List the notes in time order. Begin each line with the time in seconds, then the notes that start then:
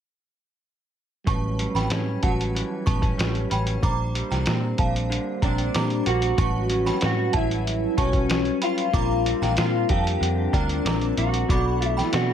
1.24 A1 A2 F#3 G3 C#4 A5 C#6, kick, closed hi-hat
1.29 B4
1.59 G3, closed hi-hat
1.75 A1 G5 B5, snare, closed hi-hat
1.90 A2 C#4, snare, closed hi-hat
2.23 A1 F#4 F#5 A5, kick, closed hi-hat
2.41 closed hi-hat
2.55 E3, closed hi-hat
2.86 A1 B3 A5 C#6, kick, closed hi-hat
3.02 C#4, kick, closed hi-hat
3.18 A1 G3, snare, closed hi-hat
3.35 closed hi-hat
3.50 A1 C#4 G5 B5, closed hi-hat
3.67 closed hi-hat
3.80 A#1 A#2 G3 A#3 D4 D6, kick, closed hi-hat
3.84 C5 A#5
4.15 G3, closed hi-hat
4.31 C2 G5 A#5, snare, closed hi-hat
4.46 A#2 C4, snare, closed hi-hat
4.78 A#1 F5 A5, kick, closed hi-hat
4.96 closed hi-hat
5.10 D3, closed hi-hat
5.42 A#1 C4 D4 G5 A#5, kick, closed hi-hat
5.58 closed hi-hat
5.74 A#2 G3 A#5 D6, snare, closed hi-hat
5.90 closed hi-hat
6.06 A#1 A#3 F#4, closed hi-hat
6.21 C4, closed hi-hat
6.36 A1 A2 F#3 G3 C#4 F#4 A5 C#6, kick, closed hi-hat
6.41 B4
6.70 C#4, closed hi-hat
6.86 G5 B5, snare, closed hi-hat
7.01 A2 F#4, snare, closed hi-hat
7.33 A1 C#4 E4 F#5 A5, kick, closed hi-hat
7.51 closed hi-hat
7.67 closed hi-hat
7.97 B1 C#4 F#4 A5 C#6, kick, closed hi-hat
8.13 kick, closed hi-hat
8.29 C#4, snare, closed hi-hat
8.45 closed hi-hat
8.62 F4 G5 B5, closed hi-hat
8.78 closed hi-hat
8.91 A#1 A#2 G3 C4 D4 F4 A#5 D6, kick, closed hi-hat
8.96 A#4
9.26 C4, closed hi-hat
9.42 A#1 G5 A#5, snare, closed hi-hat
9.57 A#2 F4, snare, closed hi-hat
9.89 F2 C4 G4 F5 A5, kick, closed hi-hat
10.07 closed hi-hat
10.21 F2 D3, closed hi-hat
10.53 D2 D4 F4 G5 A#5, kick, closed hi-hat
10.69 closed hi-hat
10.85 A#1 C4 A#5 D6, snare, closed hi-hat
11.01 closed hi-hat
11.17 A#1 F#4, closed hi-hat
11.34 closed hi-hat
11.47 B1 B2 F#3 B3 D4 D6, kick, closed hi-hat
11.51 A4 B5
11.81 A3, closed hi-hat
11.88 E4
11.97 G5 B5, snare, closed hi-hat
12.13 B2 D4 F#4, snare, closed hi-hat